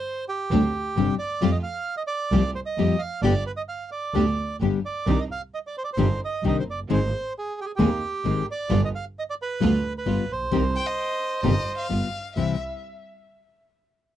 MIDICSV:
0, 0, Header, 1, 6, 480
1, 0, Start_track
1, 0, Key_signature, -3, "minor"
1, 0, Tempo, 455581
1, 1490, Time_signature, 4, 2, 24, 8
1, 14919, End_track
2, 0, Start_track
2, 0, Title_t, "Violin"
2, 0, Program_c, 0, 40
2, 11338, Note_on_c, 0, 79, 88
2, 11449, Note_on_c, 0, 75, 86
2, 11465, Note_off_c, 0, 79, 0
2, 12042, Note_off_c, 0, 75, 0
2, 12049, Note_on_c, 0, 75, 91
2, 12388, Note_off_c, 0, 75, 0
2, 12410, Note_on_c, 0, 77, 72
2, 12976, Note_off_c, 0, 77, 0
2, 13027, Note_on_c, 0, 76, 69
2, 13247, Note_off_c, 0, 76, 0
2, 14919, End_track
3, 0, Start_track
3, 0, Title_t, "Bandoneon"
3, 0, Program_c, 1, 23
3, 0, Note_on_c, 1, 72, 106
3, 259, Note_off_c, 1, 72, 0
3, 300, Note_on_c, 1, 67, 92
3, 1210, Note_off_c, 1, 67, 0
3, 1252, Note_on_c, 1, 74, 94
3, 1585, Note_off_c, 1, 74, 0
3, 1599, Note_on_c, 1, 75, 80
3, 1655, Note_off_c, 1, 75, 0
3, 1720, Note_on_c, 1, 77, 100
3, 2057, Note_off_c, 1, 77, 0
3, 2078, Note_on_c, 1, 75, 93
3, 2134, Note_off_c, 1, 75, 0
3, 2183, Note_on_c, 1, 74, 103
3, 2640, Note_off_c, 1, 74, 0
3, 2689, Note_on_c, 1, 72, 95
3, 2742, Note_off_c, 1, 72, 0
3, 2801, Note_on_c, 1, 75, 97
3, 3150, Note_on_c, 1, 77, 99
3, 3173, Note_off_c, 1, 75, 0
3, 3380, Note_off_c, 1, 77, 0
3, 3395, Note_on_c, 1, 74, 101
3, 3623, Note_off_c, 1, 74, 0
3, 3651, Note_on_c, 1, 71, 86
3, 3704, Note_off_c, 1, 71, 0
3, 3759, Note_on_c, 1, 75, 84
3, 3814, Note_off_c, 1, 75, 0
3, 3883, Note_on_c, 1, 77, 83
3, 4107, Note_off_c, 1, 77, 0
3, 4127, Note_on_c, 1, 74, 82
3, 4808, Note_off_c, 1, 74, 0
3, 5115, Note_on_c, 1, 74, 88
3, 5476, Note_off_c, 1, 74, 0
3, 5477, Note_on_c, 1, 75, 82
3, 5526, Note_off_c, 1, 75, 0
3, 5602, Note_on_c, 1, 77, 102
3, 5704, Note_off_c, 1, 77, 0
3, 5842, Note_on_c, 1, 75, 93
3, 5890, Note_off_c, 1, 75, 0
3, 5974, Note_on_c, 1, 74, 82
3, 6068, Note_off_c, 1, 74, 0
3, 6088, Note_on_c, 1, 72, 90
3, 6142, Note_off_c, 1, 72, 0
3, 6155, Note_on_c, 1, 74, 80
3, 6216, Note_off_c, 1, 74, 0
3, 6249, Note_on_c, 1, 72, 90
3, 6538, Note_off_c, 1, 72, 0
3, 6583, Note_on_c, 1, 75, 95
3, 6785, Note_off_c, 1, 75, 0
3, 6828, Note_on_c, 1, 75, 89
3, 6926, Note_off_c, 1, 75, 0
3, 6952, Note_on_c, 1, 72, 84
3, 6994, Note_off_c, 1, 72, 0
3, 7064, Note_on_c, 1, 74, 88
3, 7161, Note_off_c, 1, 74, 0
3, 7300, Note_on_c, 1, 72, 99
3, 7724, Note_off_c, 1, 72, 0
3, 7781, Note_on_c, 1, 68, 79
3, 8004, Note_off_c, 1, 68, 0
3, 8017, Note_on_c, 1, 67, 95
3, 8065, Note_off_c, 1, 67, 0
3, 8067, Note_on_c, 1, 68, 76
3, 8130, Note_off_c, 1, 68, 0
3, 8175, Note_on_c, 1, 67, 93
3, 8914, Note_off_c, 1, 67, 0
3, 8969, Note_on_c, 1, 74, 94
3, 9284, Note_off_c, 1, 74, 0
3, 9322, Note_on_c, 1, 75, 82
3, 9368, Note_off_c, 1, 75, 0
3, 9432, Note_on_c, 1, 77, 94
3, 9534, Note_off_c, 1, 77, 0
3, 9684, Note_on_c, 1, 75, 95
3, 9729, Note_off_c, 1, 75, 0
3, 9799, Note_on_c, 1, 74, 90
3, 9845, Note_off_c, 1, 74, 0
3, 9925, Note_on_c, 1, 71, 97
3, 10465, Note_off_c, 1, 71, 0
3, 10516, Note_on_c, 1, 71, 89
3, 10872, Note_off_c, 1, 71, 0
3, 10875, Note_on_c, 1, 72, 87
3, 12507, Note_off_c, 1, 72, 0
3, 14919, End_track
4, 0, Start_track
4, 0, Title_t, "String section"
4, 0, Program_c, 2, 48
4, 538, Note_on_c, 2, 60, 80
4, 542, Note_on_c, 2, 62, 69
4, 544, Note_on_c, 2, 67, 80
4, 738, Note_off_c, 2, 60, 0
4, 740, Note_off_c, 2, 62, 0
4, 741, Note_off_c, 2, 67, 0
4, 1015, Note_on_c, 2, 60, 52
4, 1016, Note_on_c, 2, 62, 43
4, 1020, Note_on_c, 2, 67, 62
4, 1214, Note_off_c, 2, 60, 0
4, 1215, Note_off_c, 2, 62, 0
4, 1217, Note_off_c, 2, 67, 0
4, 1489, Note_on_c, 2, 57, 73
4, 1493, Note_on_c, 2, 65, 72
4, 1496, Note_on_c, 2, 67, 83
4, 1690, Note_off_c, 2, 57, 0
4, 1692, Note_off_c, 2, 65, 0
4, 1694, Note_off_c, 2, 67, 0
4, 2446, Note_on_c, 2, 57, 75
4, 2446, Note_on_c, 2, 65, 66
4, 2451, Note_on_c, 2, 67, 76
4, 2648, Note_off_c, 2, 57, 0
4, 2648, Note_off_c, 2, 65, 0
4, 2650, Note_off_c, 2, 67, 0
4, 2927, Note_on_c, 2, 65, 51
4, 2929, Note_on_c, 2, 67, 58
4, 2930, Note_on_c, 2, 57, 56
4, 3127, Note_off_c, 2, 65, 0
4, 3128, Note_off_c, 2, 57, 0
4, 3128, Note_off_c, 2, 67, 0
4, 3408, Note_on_c, 2, 59, 67
4, 3408, Note_on_c, 2, 67, 84
4, 3409, Note_on_c, 2, 62, 69
4, 3608, Note_off_c, 2, 59, 0
4, 3608, Note_off_c, 2, 62, 0
4, 3608, Note_off_c, 2, 67, 0
4, 4369, Note_on_c, 2, 59, 66
4, 4373, Note_on_c, 2, 62, 67
4, 4376, Note_on_c, 2, 67, 70
4, 4570, Note_off_c, 2, 59, 0
4, 4572, Note_off_c, 2, 62, 0
4, 4574, Note_off_c, 2, 67, 0
4, 4854, Note_on_c, 2, 59, 46
4, 4854, Note_on_c, 2, 62, 42
4, 4856, Note_on_c, 2, 67, 52
4, 5055, Note_off_c, 2, 59, 0
4, 5055, Note_off_c, 2, 62, 0
4, 5056, Note_off_c, 2, 67, 0
4, 5333, Note_on_c, 2, 60, 71
4, 5336, Note_on_c, 2, 62, 67
4, 5341, Note_on_c, 2, 63, 78
4, 5536, Note_off_c, 2, 60, 0
4, 5538, Note_off_c, 2, 62, 0
4, 5540, Note_off_c, 2, 63, 0
4, 6297, Note_on_c, 2, 60, 76
4, 6299, Note_on_c, 2, 62, 63
4, 6301, Note_on_c, 2, 63, 80
4, 6499, Note_off_c, 2, 60, 0
4, 6500, Note_off_c, 2, 62, 0
4, 6501, Note_off_c, 2, 63, 0
4, 6779, Note_on_c, 2, 60, 52
4, 6780, Note_on_c, 2, 62, 47
4, 6784, Note_on_c, 2, 63, 57
4, 6980, Note_off_c, 2, 60, 0
4, 6981, Note_off_c, 2, 62, 0
4, 6983, Note_off_c, 2, 63, 0
4, 7254, Note_on_c, 2, 60, 63
4, 7257, Note_on_c, 2, 56, 72
4, 7261, Note_on_c, 2, 63, 72
4, 7457, Note_off_c, 2, 60, 0
4, 7458, Note_off_c, 2, 56, 0
4, 7460, Note_off_c, 2, 63, 0
4, 8206, Note_on_c, 2, 56, 79
4, 8210, Note_on_c, 2, 60, 68
4, 8210, Note_on_c, 2, 63, 87
4, 8410, Note_off_c, 2, 56, 0
4, 8412, Note_off_c, 2, 60, 0
4, 8412, Note_off_c, 2, 63, 0
4, 8683, Note_on_c, 2, 56, 52
4, 8686, Note_on_c, 2, 60, 51
4, 8688, Note_on_c, 2, 63, 58
4, 8887, Note_off_c, 2, 56, 0
4, 8888, Note_off_c, 2, 60, 0
4, 8889, Note_off_c, 2, 63, 0
4, 9160, Note_on_c, 2, 55, 72
4, 9161, Note_on_c, 2, 59, 72
4, 9163, Note_on_c, 2, 65, 81
4, 9365, Note_off_c, 2, 55, 0
4, 9365, Note_off_c, 2, 59, 0
4, 9366, Note_off_c, 2, 65, 0
4, 10123, Note_on_c, 2, 55, 72
4, 10125, Note_on_c, 2, 59, 67
4, 10130, Note_on_c, 2, 65, 87
4, 10326, Note_off_c, 2, 55, 0
4, 10327, Note_off_c, 2, 59, 0
4, 10329, Note_off_c, 2, 65, 0
4, 10610, Note_on_c, 2, 55, 50
4, 10612, Note_on_c, 2, 59, 49
4, 10615, Note_on_c, 2, 65, 60
4, 10810, Note_off_c, 2, 55, 0
4, 10811, Note_off_c, 2, 59, 0
4, 10813, Note_off_c, 2, 65, 0
4, 11089, Note_on_c, 2, 55, 69
4, 11090, Note_on_c, 2, 60, 68
4, 11095, Note_on_c, 2, 63, 81
4, 11290, Note_off_c, 2, 55, 0
4, 11290, Note_off_c, 2, 60, 0
4, 11293, Note_off_c, 2, 63, 0
4, 12043, Note_on_c, 2, 60, 67
4, 12045, Note_on_c, 2, 63, 78
4, 12046, Note_on_c, 2, 55, 66
4, 12250, Note_off_c, 2, 60, 0
4, 12251, Note_off_c, 2, 55, 0
4, 12251, Note_off_c, 2, 63, 0
4, 12531, Note_on_c, 2, 55, 51
4, 12535, Note_on_c, 2, 59, 44
4, 12535, Note_on_c, 2, 65, 52
4, 12737, Note_off_c, 2, 55, 0
4, 12739, Note_off_c, 2, 59, 0
4, 12739, Note_off_c, 2, 65, 0
4, 13022, Note_on_c, 2, 55, 51
4, 13022, Note_on_c, 2, 64, 55
4, 13025, Note_on_c, 2, 60, 47
4, 13223, Note_off_c, 2, 55, 0
4, 13223, Note_off_c, 2, 64, 0
4, 13224, Note_off_c, 2, 60, 0
4, 14919, End_track
5, 0, Start_track
5, 0, Title_t, "Nylon-string guitar"
5, 0, Program_c, 3, 24
5, 548, Note_on_c, 3, 48, 77
5, 549, Note_on_c, 3, 55, 78
5, 554, Note_on_c, 3, 60, 93
5, 554, Note_on_c, 3, 62, 95
5, 558, Note_on_c, 3, 67, 77
5, 636, Note_off_c, 3, 48, 0
5, 637, Note_off_c, 3, 55, 0
5, 639, Note_off_c, 3, 60, 0
5, 639, Note_off_c, 3, 62, 0
5, 641, Note_off_c, 3, 67, 0
5, 1021, Note_on_c, 3, 48, 76
5, 1025, Note_on_c, 3, 55, 82
5, 1025, Note_on_c, 3, 60, 72
5, 1032, Note_on_c, 3, 62, 75
5, 1034, Note_on_c, 3, 67, 83
5, 1194, Note_off_c, 3, 48, 0
5, 1196, Note_off_c, 3, 55, 0
5, 1196, Note_off_c, 3, 60, 0
5, 1199, Note_off_c, 3, 62, 0
5, 1200, Note_off_c, 3, 67, 0
5, 1493, Note_on_c, 3, 53, 86
5, 1496, Note_on_c, 3, 55, 90
5, 1499, Note_on_c, 3, 60, 84
5, 1503, Note_on_c, 3, 67, 102
5, 1585, Note_off_c, 3, 53, 0
5, 1587, Note_off_c, 3, 55, 0
5, 1588, Note_off_c, 3, 60, 0
5, 1590, Note_off_c, 3, 67, 0
5, 2447, Note_on_c, 3, 53, 88
5, 2451, Note_on_c, 3, 55, 86
5, 2452, Note_on_c, 3, 60, 92
5, 2459, Note_on_c, 3, 67, 89
5, 2541, Note_off_c, 3, 53, 0
5, 2543, Note_off_c, 3, 55, 0
5, 2544, Note_off_c, 3, 60, 0
5, 2547, Note_off_c, 3, 67, 0
5, 2931, Note_on_c, 3, 53, 74
5, 2936, Note_on_c, 3, 60, 72
5, 2938, Note_on_c, 3, 55, 74
5, 2940, Note_on_c, 3, 67, 86
5, 3105, Note_off_c, 3, 53, 0
5, 3108, Note_off_c, 3, 60, 0
5, 3109, Note_off_c, 3, 55, 0
5, 3110, Note_off_c, 3, 67, 0
5, 3400, Note_on_c, 3, 50, 79
5, 3407, Note_on_c, 3, 55, 75
5, 3409, Note_on_c, 3, 62, 82
5, 3412, Note_on_c, 3, 59, 95
5, 3417, Note_on_c, 3, 67, 100
5, 3497, Note_off_c, 3, 50, 0
5, 3500, Note_off_c, 3, 55, 0
5, 3501, Note_off_c, 3, 62, 0
5, 3502, Note_off_c, 3, 59, 0
5, 3505, Note_off_c, 3, 67, 0
5, 4368, Note_on_c, 3, 50, 86
5, 4369, Note_on_c, 3, 55, 71
5, 4373, Note_on_c, 3, 59, 80
5, 4376, Note_on_c, 3, 62, 84
5, 4377, Note_on_c, 3, 67, 90
5, 4462, Note_off_c, 3, 50, 0
5, 4462, Note_off_c, 3, 55, 0
5, 4464, Note_off_c, 3, 59, 0
5, 4466, Note_off_c, 3, 62, 0
5, 4466, Note_off_c, 3, 67, 0
5, 4857, Note_on_c, 3, 50, 65
5, 4868, Note_on_c, 3, 55, 72
5, 4868, Note_on_c, 3, 59, 66
5, 4872, Note_on_c, 3, 62, 66
5, 4876, Note_on_c, 3, 67, 68
5, 5033, Note_off_c, 3, 50, 0
5, 5038, Note_off_c, 3, 55, 0
5, 5038, Note_off_c, 3, 59, 0
5, 5041, Note_off_c, 3, 62, 0
5, 5042, Note_off_c, 3, 67, 0
5, 5342, Note_on_c, 3, 51, 91
5, 5344, Note_on_c, 3, 48, 75
5, 5350, Note_on_c, 3, 55, 76
5, 5352, Note_on_c, 3, 62, 76
5, 5354, Note_on_c, 3, 67, 73
5, 5432, Note_off_c, 3, 51, 0
5, 5433, Note_off_c, 3, 48, 0
5, 5436, Note_off_c, 3, 55, 0
5, 5437, Note_off_c, 3, 62, 0
5, 5439, Note_off_c, 3, 67, 0
5, 6289, Note_on_c, 3, 48, 74
5, 6295, Note_on_c, 3, 55, 85
5, 6296, Note_on_c, 3, 51, 84
5, 6301, Note_on_c, 3, 62, 89
5, 6307, Note_on_c, 3, 67, 101
5, 6387, Note_off_c, 3, 48, 0
5, 6391, Note_off_c, 3, 51, 0
5, 6391, Note_off_c, 3, 55, 0
5, 6393, Note_off_c, 3, 62, 0
5, 6396, Note_off_c, 3, 67, 0
5, 6788, Note_on_c, 3, 51, 75
5, 6789, Note_on_c, 3, 48, 71
5, 6791, Note_on_c, 3, 55, 74
5, 6795, Note_on_c, 3, 67, 68
5, 6798, Note_on_c, 3, 62, 75
5, 6961, Note_off_c, 3, 51, 0
5, 6962, Note_off_c, 3, 48, 0
5, 6963, Note_off_c, 3, 55, 0
5, 6965, Note_off_c, 3, 67, 0
5, 6966, Note_off_c, 3, 62, 0
5, 7268, Note_on_c, 3, 51, 76
5, 7269, Note_on_c, 3, 56, 83
5, 7272, Note_on_c, 3, 60, 81
5, 7276, Note_on_c, 3, 68, 92
5, 7278, Note_on_c, 3, 63, 79
5, 7356, Note_off_c, 3, 51, 0
5, 7357, Note_off_c, 3, 56, 0
5, 7358, Note_off_c, 3, 60, 0
5, 7360, Note_off_c, 3, 68, 0
5, 7362, Note_off_c, 3, 63, 0
5, 8207, Note_on_c, 3, 51, 84
5, 8207, Note_on_c, 3, 56, 94
5, 8213, Note_on_c, 3, 60, 81
5, 8217, Note_on_c, 3, 63, 90
5, 8217, Note_on_c, 3, 68, 93
5, 8304, Note_off_c, 3, 51, 0
5, 8304, Note_off_c, 3, 56, 0
5, 8307, Note_off_c, 3, 60, 0
5, 8309, Note_off_c, 3, 63, 0
5, 8309, Note_off_c, 3, 68, 0
5, 8689, Note_on_c, 3, 51, 66
5, 8694, Note_on_c, 3, 63, 76
5, 8695, Note_on_c, 3, 56, 69
5, 8697, Note_on_c, 3, 60, 69
5, 8701, Note_on_c, 3, 68, 85
5, 8866, Note_off_c, 3, 51, 0
5, 8869, Note_off_c, 3, 56, 0
5, 8869, Note_off_c, 3, 63, 0
5, 8870, Note_off_c, 3, 60, 0
5, 8873, Note_off_c, 3, 68, 0
5, 9165, Note_on_c, 3, 55, 88
5, 9169, Note_on_c, 3, 59, 82
5, 9177, Note_on_c, 3, 65, 92
5, 9260, Note_off_c, 3, 55, 0
5, 9262, Note_off_c, 3, 59, 0
5, 9266, Note_off_c, 3, 65, 0
5, 10118, Note_on_c, 3, 55, 85
5, 10125, Note_on_c, 3, 59, 97
5, 10129, Note_on_c, 3, 65, 92
5, 10216, Note_off_c, 3, 55, 0
5, 10220, Note_off_c, 3, 59, 0
5, 10222, Note_off_c, 3, 65, 0
5, 10596, Note_on_c, 3, 55, 64
5, 10604, Note_on_c, 3, 59, 72
5, 10605, Note_on_c, 3, 65, 79
5, 10779, Note_off_c, 3, 55, 0
5, 10784, Note_off_c, 3, 59, 0
5, 10784, Note_off_c, 3, 65, 0
5, 11076, Note_on_c, 3, 48, 78
5, 11079, Note_on_c, 3, 51, 91
5, 11080, Note_on_c, 3, 55, 71
5, 11086, Note_on_c, 3, 60, 84
5, 11091, Note_on_c, 3, 67, 93
5, 11176, Note_off_c, 3, 48, 0
5, 11177, Note_off_c, 3, 51, 0
5, 11178, Note_off_c, 3, 55, 0
5, 11181, Note_off_c, 3, 60, 0
5, 11183, Note_off_c, 3, 67, 0
5, 12049, Note_on_c, 3, 48, 76
5, 12050, Note_on_c, 3, 51, 79
5, 12057, Note_on_c, 3, 60, 86
5, 12058, Note_on_c, 3, 55, 87
5, 12061, Note_on_c, 3, 67, 84
5, 12144, Note_off_c, 3, 48, 0
5, 12145, Note_off_c, 3, 51, 0
5, 12149, Note_off_c, 3, 55, 0
5, 12149, Note_off_c, 3, 60, 0
5, 12150, Note_off_c, 3, 67, 0
5, 12529, Note_on_c, 3, 55, 67
5, 12533, Note_on_c, 3, 59, 69
5, 12542, Note_on_c, 3, 65, 75
5, 12713, Note_off_c, 3, 55, 0
5, 12715, Note_off_c, 3, 59, 0
5, 12719, Note_off_c, 3, 65, 0
5, 13029, Note_on_c, 3, 48, 72
5, 13032, Note_on_c, 3, 52, 73
5, 13041, Note_on_c, 3, 55, 77
5, 13043, Note_on_c, 3, 60, 90
5, 13050, Note_on_c, 3, 64, 83
5, 13217, Note_off_c, 3, 48, 0
5, 13219, Note_off_c, 3, 52, 0
5, 13223, Note_off_c, 3, 55, 0
5, 13224, Note_off_c, 3, 60, 0
5, 13228, Note_off_c, 3, 64, 0
5, 14919, End_track
6, 0, Start_track
6, 0, Title_t, "Double bass"
6, 0, Program_c, 4, 43
6, 531, Note_on_c, 4, 38, 104
6, 734, Note_off_c, 4, 38, 0
6, 1014, Note_on_c, 4, 31, 69
6, 1214, Note_off_c, 4, 31, 0
6, 1489, Note_on_c, 4, 41, 93
6, 1690, Note_off_c, 4, 41, 0
6, 2439, Note_on_c, 4, 36, 107
6, 2644, Note_off_c, 4, 36, 0
6, 2919, Note_on_c, 4, 41, 70
6, 3123, Note_off_c, 4, 41, 0
6, 3395, Note_on_c, 4, 31, 95
6, 3601, Note_off_c, 4, 31, 0
6, 4359, Note_on_c, 4, 38, 92
6, 4565, Note_off_c, 4, 38, 0
6, 4851, Note_on_c, 4, 31, 65
6, 5054, Note_off_c, 4, 31, 0
6, 5336, Note_on_c, 4, 36, 90
6, 5537, Note_off_c, 4, 36, 0
6, 6295, Note_on_c, 4, 31, 96
6, 6498, Note_off_c, 4, 31, 0
6, 6772, Note_on_c, 4, 36, 64
6, 6977, Note_off_c, 4, 36, 0
6, 7011, Note_on_c, 4, 30, 51
6, 7241, Note_off_c, 4, 30, 0
6, 7248, Note_on_c, 4, 32, 92
6, 7453, Note_off_c, 4, 32, 0
6, 8208, Note_on_c, 4, 39, 101
6, 8411, Note_off_c, 4, 39, 0
6, 8686, Note_on_c, 4, 32, 67
6, 8889, Note_off_c, 4, 32, 0
6, 9163, Note_on_c, 4, 31, 98
6, 9366, Note_off_c, 4, 31, 0
6, 10127, Note_on_c, 4, 38, 102
6, 10328, Note_off_c, 4, 38, 0
6, 10610, Note_on_c, 4, 31, 70
6, 10810, Note_off_c, 4, 31, 0
6, 10840, Note_on_c, 4, 34, 57
6, 11084, Note_off_c, 4, 34, 0
6, 11094, Note_on_c, 4, 36, 94
6, 11292, Note_off_c, 4, 36, 0
6, 12051, Note_on_c, 4, 31, 95
6, 12254, Note_off_c, 4, 31, 0
6, 12540, Note_on_c, 4, 31, 64
6, 12742, Note_off_c, 4, 31, 0
6, 13021, Note_on_c, 4, 36, 55
6, 13222, Note_off_c, 4, 36, 0
6, 14919, End_track
0, 0, End_of_file